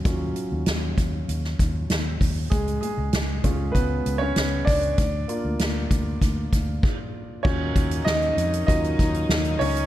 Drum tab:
CC |----------------|----------------|------------x---|x---------------|
HH |x-x-x-x-x-x-x-o-|xxx-x-x-x-x-x-ox|x-x-x-x-x-x-----|--xx-xxxxxxx-xox|
SD |----o----o--o---|----o-------o---|----o-----------|----o-------o---|
BD |o-----o---o---o-|o-----o-o-----o-|o-----o-o-o-o---|o-o-----o-o-----|